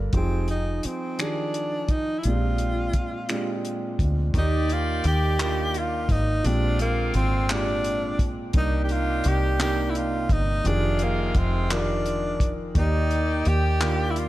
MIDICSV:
0, 0, Header, 1, 7, 480
1, 0, Start_track
1, 0, Tempo, 701754
1, 87, Time_signature, 6, 3, 24, 8
1, 9771, End_track
2, 0, Start_track
2, 0, Title_t, "Tenor saxophone"
2, 0, Program_c, 0, 66
2, 104, Note_on_c, 0, 60, 77
2, 319, Note_off_c, 0, 60, 0
2, 344, Note_on_c, 0, 63, 75
2, 584, Note_on_c, 0, 60, 70
2, 594, Note_off_c, 0, 63, 0
2, 826, Note_on_c, 0, 62, 76
2, 836, Note_off_c, 0, 60, 0
2, 1307, Note_on_c, 0, 63, 82
2, 1317, Note_off_c, 0, 62, 0
2, 1494, Note_on_c, 0, 64, 71
2, 1504, Note_off_c, 0, 63, 0
2, 1537, Note_on_c, 0, 65, 89
2, 1547, Note_off_c, 0, 64, 0
2, 2492, Note_off_c, 0, 65, 0
2, 2995, Note_on_c, 0, 63, 97
2, 3233, Note_on_c, 0, 65, 103
2, 3244, Note_off_c, 0, 63, 0
2, 3460, Note_off_c, 0, 65, 0
2, 3468, Note_on_c, 0, 67, 99
2, 3952, Note_on_c, 0, 65, 94
2, 3962, Note_off_c, 0, 67, 0
2, 4184, Note_on_c, 0, 63, 93
2, 4194, Note_off_c, 0, 65, 0
2, 4415, Note_on_c, 0, 62, 96
2, 4426, Note_off_c, 0, 63, 0
2, 4651, Note_off_c, 0, 62, 0
2, 4660, Note_on_c, 0, 58, 94
2, 4877, Note_off_c, 0, 58, 0
2, 4897, Note_on_c, 0, 60, 96
2, 5142, Note_on_c, 0, 62, 100
2, 5152, Note_off_c, 0, 60, 0
2, 5674, Note_off_c, 0, 62, 0
2, 5862, Note_on_c, 0, 63, 103
2, 6034, Note_off_c, 0, 63, 0
2, 6045, Note_on_c, 0, 67, 72
2, 6100, Note_on_c, 0, 65, 99
2, 6111, Note_off_c, 0, 67, 0
2, 6344, Note_on_c, 0, 67, 98
2, 6354, Note_off_c, 0, 65, 0
2, 6575, Note_off_c, 0, 67, 0
2, 6579, Note_on_c, 0, 67, 98
2, 6772, Note_on_c, 0, 64, 71
2, 6782, Note_off_c, 0, 67, 0
2, 6820, Note_on_c, 0, 65, 95
2, 6830, Note_off_c, 0, 64, 0
2, 7061, Note_on_c, 0, 63, 94
2, 7071, Note_off_c, 0, 65, 0
2, 7297, Note_on_c, 0, 62, 100
2, 7307, Note_off_c, 0, 63, 0
2, 7545, Note_on_c, 0, 58, 91
2, 7555, Note_off_c, 0, 62, 0
2, 7779, Note_on_c, 0, 60, 88
2, 7790, Note_off_c, 0, 58, 0
2, 8022, Note_on_c, 0, 62, 100
2, 8032, Note_off_c, 0, 60, 0
2, 8554, Note_off_c, 0, 62, 0
2, 8741, Note_on_c, 0, 63, 100
2, 9222, Note_on_c, 0, 67, 100
2, 9232, Note_off_c, 0, 63, 0
2, 9648, Note_on_c, 0, 64, 70
2, 9658, Note_off_c, 0, 67, 0
2, 9703, Note_on_c, 0, 65, 93
2, 9714, Note_off_c, 0, 64, 0
2, 9771, Note_off_c, 0, 65, 0
2, 9771, End_track
3, 0, Start_track
3, 0, Title_t, "Grand piano"
3, 0, Program_c, 1, 0
3, 0, Control_c, 1, 64, 127
3, 0, Note_on_c, 1, 55, 69
3, 0, Note_on_c, 1, 62, 68
3, 0, Note_on_c, 1, 65, 65
3, 0, Note_on_c, 1, 69, 62
3, 0, Note_on_c, 1, 70, 79
3, 91, Note_on_c, 1, 53, 75
3, 97, Control_c, 1, 64, 0
3, 101, Note_off_c, 1, 62, 0
3, 101, Note_off_c, 1, 69, 0
3, 101, Note_off_c, 1, 70, 0
3, 101, Note_on_c, 1, 63, 62
3, 103, Note_off_c, 1, 55, 0
3, 103, Note_off_c, 1, 65, 0
3, 106, Note_on_c, 1, 67, 64
3, 116, Note_on_c, 1, 68, 77
3, 231, Control_c, 1, 64, 127
3, 578, Note_off_c, 1, 53, 0
3, 582, Note_off_c, 1, 63, 0
3, 585, Note_off_c, 1, 67, 0
3, 590, Note_off_c, 1, 68, 0
3, 812, Note_on_c, 1, 53, 56
3, 820, Note_on_c, 1, 51, 51
3, 828, Note_on_c, 1, 67, 54
3, 832, Note_on_c, 1, 68, 66
3, 1298, Note_off_c, 1, 53, 0
3, 1302, Note_off_c, 1, 51, 0
3, 1306, Note_off_c, 1, 67, 0
3, 1308, Note_off_c, 1, 68, 0
3, 1537, Control_c, 1, 64, 0
3, 1538, Note_on_c, 1, 46, 69
3, 1543, Note_on_c, 1, 56, 64
3, 1548, Note_on_c, 1, 60, 64
3, 1550, Note_on_c, 1, 62, 62
3, 1560, Note_on_c, 1, 67, 76
3, 1669, Control_c, 1, 64, 127
3, 2021, Note_off_c, 1, 46, 0
3, 2023, Note_off_c, 1, 56, 0
3, 2026, Note_off_c, 1, 60, 0
3, 2027, Note_off_c, 1, 62, 0
3, 2032, Note_off_c, 1, 67, 0
3, 2248, Note_on_c, 1, 46, 69
3, 2254, Note_on_c, 1, 56, 69
3, 2257, Note_on_c, 1, 60, 66
3, 2262, Note_on_c, 1, 62, 67
3, 2268, Note_on_c, 1, 67, 76
3, 2736, Note_off_c, 1, 46, 0
3, 2739, Note_off_c, 1, 56, 0
3, 2741, Note_off_c, 1, 60, 0
3, 2743, Note_off_c, 1, 62, 0
3, 2746, Note_off_c, 1, 67, 0
3, 2973, Note_on_c, 1, 51, 79
3, 2976, Control_c, 1, 64, 0
3, 2978, Note_on_c, 1, 58, 70
3, 2984, Note_on_c, 1, 74, 73
3, 2990, Note_on_c, 1, 67, 84
3, 3109, Control_c, 1, 64, 127
3, 3458, Note_off_c, 1, 51, 0
3, 3461, Note_off_c, 1, 58, 0
3, 3464, Note_off_c, 1, 74, 0
3, 3467, Note_off_c, 1, 67, 0
3, 3692, Note_on_c, 1, 51, 68
3, 3700, Note_on_c, 1, 58, 65
3, 3704, Note_on_c, 1, 62, 63
3, 3710, Note_on_c, 1, 65, 70
3, 4178, Note_off_c, 1, 51, 0
3, 4182, Note_off_c, 1, 58, 0
3, 4184, Note_off_c, 1, 62, 0
3, 4187, Note_off_c, 1, 65, 0
3, 4399, Note_on_c, 1, 46, 82
3, 4406, Note_on_c, 1, 56, 73
3, 4412, Note_on_c, 1, 60, 75
3, 4417, Control_c, 1, 64, 0
3, 4417, Note_on_c, 1, 62, 71
3, 4422, Note_on_c, 1, 67, 86
3, 4528, Control_c, 1, 64, 127
3, 4891, Note_off_c, 1, 46, 0
3, 4895, Note_off_c, 1, 56, 0
3, 4898, Note_off_c, 1, 60, 0
3, 4900, Note_off_c, 1, 62, 0
3, 4903, Note_off_c, 1, 67, 0
3, 5122, Note_on_c, 1, 46, 65
3, 5128, Note_on_c, 1, 56, 60
3, 5131, Note_on_c, 1, 60, 63
3, 5137, Note_on_c, 1, 62, 58
3, 5141, Note_on_c, 1, 67, 83
3, 5613, Note_off_c, 1, 46, 0
3, 5616, Note_off_c, 1, 56, 0
3, 5618, Note_off_c, 1, 60, 0
3, 5620, Note_off_c, 1, 62, 0
3, 5623, Note_off_c, 1, 67, 0
3, 5843, Note_on_c, 1, 48, 76
3, 5847, Note_on_c, 1, 58, 71
3, 5855, Control_c, 1, 64, 0
3, 5856, Note_on_c, 1, 62, 73
3, 5858, Note_on_c, 1, 63, 86
3, 5977, Control_c, 1, 64, 127
3, 6334, Note_off_c, 1, 48, 0
3, 6336, Note_off_c, 1, 58, 0
3, 6340, Note_off_c, 1, 62, 0
3, 6341, Note_off_c, 1, 63, 0
3, 6561, Note_on_c, 1, 48, 72
3, 6571, Note_on_c, 1, 58, 68
3, 6576, Note_on_c, 1, 62, 65
3, 6581, Note_on_c, 1, 63, 76
3, 7052, Note_off_c, 1, 48, 0
3, 7057, Note_off_c, 1, 58, 0
3, 7060, Note_off_c, 1, 62, 0
3, 7063, Note_off_c, 1, 63, 0
3, 7279, Note_on_c, 1, 53, 84
3, 7290, Note_on_c, 1, 51, 78
3, 7294, Control_c, 1, 64, 0
3, 7296, Note_on_c, 1, 67, 70
3, 7303, Note_on_c, 1, 68, 89
3, 7406, Control_c, 1, 64, 127
3, 7772, Note_off_c, 1, 53, 0
3, 7777, Note_off_c, 1, 51, 0
3, 7780, Note_off_c, 1, 67, 0
3, 7783, Note_off_c, 1, 68, 0
3, 7998, Note_on_c, 1, 53, 70
3, 8006, Note_on_c, 1, 51, 62
3, 8010, Note_on_c, 1, 67, 67
3, 8017, Note_on_c, 1, 70, 77
3, 8491, Note_off_c, 1, 53, 0
3, 8495, Note_off_c, 1, 51, 0
3, 8497, Note_off_c, 1, 67, 0
3, 8500, Note_off_c, 1, 70, 0
3, 8718, Note_on_c, 1, 51, 80
3, 8724, Note_on_c, 1, 58, 72
3, 8729, Note_on_c, 1, 74, 77
3, 8735, Control_c, 1, 64, 0
3, 8736, Note_on_c, 1, 67, 86
3, 8874, Control_c, 1, 64, 127
3, 9211, Note_off_c, 1, 51, 0
3, 9214, Note_off_c, 1, 58, 0
3, 9217, Note_off_c, 1, 74, 0
3, 9220, Note_off_c, 1, 67, 0
3, 9440, Note_on_c, 1, 51, 71
3, 9444, Note_on_c, 1, 58, 64
3, 9455, Note_on_c, 1, 62, 66
3, 9459, Note_on_c, 1, 65, 79
3, 9771, Note_off_c, 1, 51, 0
3, 9771, Note_off_c, 1, 58, 0
3, 9771, Note_off_c, 1, 62, 0
3, 9771, Note_off_c, 1, 65, 0
3, 9771, End_track
4, 0, Start_track
4, 0, Title_t, "Horn section"
4, 0, Program_c, 2, 61
4, 2967, Note_on_c, 2, 51, 72
4, 2968, Note_on_c, 2, 67, 80
4, 2968, Note_on_c, 2, 74, 82
4, 4143, Note_off_c, 2, 51, 0
4, 4143, Note_off_c, 2, 67, 0
4, 4144, Note_off_c, 2, 74, 0
4, 4406, Note_on_c, 2, 60, 79
4, 4407, Note_on_c, 2, 50, 72
4, 4408, Note_on_c, 2, 65, 81
4, 5583, Note_off_c, 2, 50, 0
4, 5583, Note_off_c, 2, 60, 0
4, 5584, Note_off_c, 2, 65, 0
4, 5844, Note_on_c, 2, 67, 80
4, 5845, Note_on_c, 2, 51, 83
4, 5845, Note_on_c, 2, 62, 82
4, 7021, Note_off_c, 2, 67, 0
4, 7022, Note_off_c, 2, 51, 0
4, 7022, Note_off_c, 2, 62, 0
4, 7282, Note_on_c, 2, 48, 82
4, 7283, Note_on_c, 2, 65, 89
4, 7284, Note_on_c, 2, 56, 80
4, 8461, Note_off_c, 2, 48, 0
4, 8461, Note_off_c, 2, 56, 0
4, 8461, Note_off_c, 2, 65, 0
4, 8726, Note_on_c, 2, 67, 83
4, 8727, Note_on_c, 2, 51, 77
4, 8727, Note_on_c, 2, 74, 75
4, 9771, Note_off_c, 2, 51, 0
4, 9771, Note_off_c, 2, 67, 0
4, 9771, Note_off_c, 2, 74, 0
4, 9771, End_track
5, 0, Start_track
5, 0, Title_t, "Fingered electric bass"
5, 0, Program_c, 3, 33
5, 92, Note_on_c, 3, 29, 90
5, 542, Note_off_c, 3, 29, 0
5, 1539, Note_on_c, 3, 34, 76
5, 1986, Note_off_c, 3, 34, 0
5, 2735, Note_on_c, 3, 38, 75
5, 2948, Note_off_c, 3, 38, 0
5, 2973, Note_on_c, 3, 39, 89
5, 3422, Note_off_c, 3, 39, 0
5, 3455, Note_on_c, 3, 39, 92
5, 4167, Note_on_c, 3, 32, 88
5, 4178, Note_off_c, 3, 39, 0
5, 4383, Note_off_c, 3, 32, 0
5, 4414, Note_on_c, 3, 34, 104
5, 4863, Note_off_c, 3, 34, 0
5, 4890, Note_on_c, 3, 32, 93
5, 5821, Note_off_c, 3, 32, 0
5, 5848, Note_on_c, 3, 36, 95
5, 6300, Note_off_c, 3, 36, 0
5, 6332, Note_on_c, 3, 36, 94
5, 7022, Note_off_c, 3, 36, 0
5, 7047, Note_on_c, 3, 31, 89
5, 7263, Note_off_c, 3, 31, 0
5, 7289, Note_on_c, 3, 29, 92
5, 7740, Note_off_c, 3, 29, 0
5, 7767, Note_on_c, 3, 29, 93
5, 8699, Note_off_c, 3, 29, 0
5, 8729, Note_on_c, 3, 39, 94
5, 9181, Note_off_c, 3, 39, 0
5, 9211, Note_on_c, 3, 39, 86
5, 9771, Note_off_c, 3, 39, 0
5, 9771, End_track
6, 0, Start_track
6, 0, Title_t, "Muted fingered electric bass strokes"
6, 581, Note_on_c, 9, 29, 43
6, 649, Note_off_c, 9, 29, 0
6, 2012, Note_on_c, 9, 29, 40
6, 2080, Note_off_c, 9, 29, 0
6, 9771, End_track
7, 0, Start_track
7, 0, Title_t, "Drums"
7, 87, Note_on_c, 9, 42, 72
7, 89, Note_on_c, 9, 36, 100
7, 155, Note_off_c, 9, 42, 0
7, 157, Note_off_c, 9, 36, 0
7, 327, Note_on_c, 9, 42, 46
7, 395, Note_off_c, 9, 42, 0
7, 569, Note_on_c, 9, 42, 67
7, 637, Note_off_c, 9, 42, 0
7, 813, Note_on_c, 9, 42, 65
7, 818, Note_on_c, 9, 26, 88
7, 881, Note_off_c, 9, 42, 0
7, 886, Note_off_c, 9, 26, 0
7, 1054, Note_on_c, 9, 42, 51
7, 1123, Note_off_c, 9, 42, 0
7, 1289, Note_on_c, 9, 42, 71
7, 1290, Note_on_c, 9, 36, 90
7, 1358, Note_off_c, 9, 42, 0
7, 1359, Note_off_c, 9, 36, 0
7, 1528, Note_on_c, 9, 42, 69
7, 1597, Note_off_c, 9, 42, 0
7, 1767, Note_on_c, 9, 42, 46
7, 1835, Note_off_c, 9, 42, 0
7, 2007, Note_on_c, 9, 42, 66
7, 2009, Note_on_c, 9, 36, 80
7, 2076, Note_off_c, 9, 42, 0
7, 2077, Note_off_c, 9, 36, 0
7, 2249, Note_on_c, 9, 42, 67
7, 2254, Note_on_c, 9, 26, 87
7, 2317, Note_off_c, 9, 42, 0
7, 2322, Note_off_c, 9, 26, 0
7, 2494, Note_on_c, 9, 42, 48
7, 2563, Note_off_c, 9, 42, 0
7, 2730, Note_on_c, 9, 36, 81
7, 2734, Note_on_c, 9, 42, 77
7, 2798, Note_off_c, 9, 36, 0
7, 2803, Note_off_c, 9, 42, 0
7, 2968, Note_on_c, 9, 36, 112
7, 2972, Note_on_c, 9, 42, 84
7, 3037, Note_off_c, 9, 36, 0
7, 3040, Note_off_c, 9, 42, 0
7, 3211, Note_on_c, 9, 42, 56
7, 3280, Note_off_c, 9, 42, 0
7, 3447, Note_on_c, 9, 42, 73
7, 3515, Note_off_c, 9, 42, 0
7, 3688, Note_on_c, 9, 42, 79
7, 3694, Note_on_c, 9, 39, 96
7, 3756, Note_off_c, 9, 42, 0
7, 3762, Note_off_c, 9, 39, 0
7, 3928, Note_on_c, 9, 42, 54
7, 3996, Note_off_c, 9, 42, 0
7, 4164, Note_on_c, 9, 36, 104
7, 4167, Note_on_c, 9, 42, 87
7, 4233, Note_off_c, 9, 36, 0
7, 4236, Note_off_c, 9, 42, 0
7, 4408, Note_on_c, 9, 42, 86
7, 4477, Note_off_c, 9, 42, 0
7, 4646, Note_on_c, 9, 42, 57
7, 4714, Note_off_c, 9, 42, 0
7, 4883, Note_on_c, 9, 42, 70
7, 4951, Note_off_c, 9, 42, 0
7, 5124, Note_on_c, 9, 42, 72
7, 5129, Note_on_c, 9, 39, 98
7, 5192, Note_off_c, 9, 42, 0
7, 5197, Note_off_c, 9, 39, 0
7, 5365, Note_on_c, 9, 42, 53
7, 5434, Note_off_c, 9, 42, 0
7, 5603, Note_on_c, 9, 36, 98
7, 5605, Note_on_c, 9, 42, 84
7, 5671, Note_off_c, 9, 36, 0
7, 5673, Note_off_c, 9, 42, 0
7, 5837, Note_on_c, 9, 42, 84
7, 5842, Note_on_c, 9, 36, 122
7, 5906, Note_off_c, 9, 42, 0
7, 5910, Note_off_c, 9, 36, 0
7, 6080, Note_on_c, 9, 42, 52
7, 6148, Note_off_c, 9, 42, 0
7, 6319, Note_on_c, 9, 42, 76
7, 6387, Note_off_c, 9, 42, 0
7, 6563, Note_on_c, 9, 42, 78
7, 6568, Note_on_c, 9, 39, 98
7, 6631, Note_off_c, 9, 42, 0
7, 6637, Note_off_c, 9, 39, 0
7, 6806, Note_on_c, 9, 42, 56
7, 6875, Note_off_c, 9, 42, 0
7, 7041, Note_on_c, 9, 36, 97
7, 7045, Note_on_c, 9, 42, 84
7, 7110, Note_off_c, 9, 36, 0
7, 7113, Note_off_c, 9, 42, 0
7, 7285, Note_on_c, 9, 42, 85
7, 7353, Note_off_c, 9, 42, 0
7, 7516, Note_on_c, 9, 42, 54
7, 7585, Note_off_c, 9, 42, 0
7, 7761, Note_on_c, 9, 36, 96
7, 7761, Note_on_c, 9, 42, 75
7, 7829, Note_off_c, 9, 42, 0
7, 7830, Note_off_c, 9, 36, 0
7, 8005, Note_on_c, 9, 42, 80
7, 8010, Note_on_c, 9, 39, 104
7, 8073, Note_off_c, 9, 42, 0
7, 8079, Note_off_c, 9, 39, 0
7, 8247, Note_on_c, 9, 42, 54
7, 8315, Note_off_c, 9, 42, 0
7, 8482, Note_on_c, 9, 36, 89
7, 8486, Note_on_c, 9, 42, 96
7, 8551, Note_off_c, 9, 36, 0
7, 8555, Note_off_c, 9, 42, 0
7, 8722, Note_on_c, 9, 42, 84
7, 8723, Note_on_c, 9, 36, 110
7, 8791, Note_off_c, 9, 36, 0
7, 8791, Note_off_c, 9, 42, 0
7, 8965, Note_on_c, 9, 42, 52
7, 9033, Note_off_c, 9, 42, 0
7, 9202, Note_on_c, 9, 42, 77
7, 9270, Note_off_c, 9, 42, 0
7, 9443, Note_on_c, 9, 42, 73
7, 9448, Note_on_c, 9, 39, 96
7, 9511, Note_off_c, 9, 42, 0
7, 9516, Note_off_c, 9, 39, 0
7, 9686, Note_on_c, 9, 42, 58
7, 9755, Note_off_c, 9, 42, 0
7, 9771, End_track
0, 0, End_of_file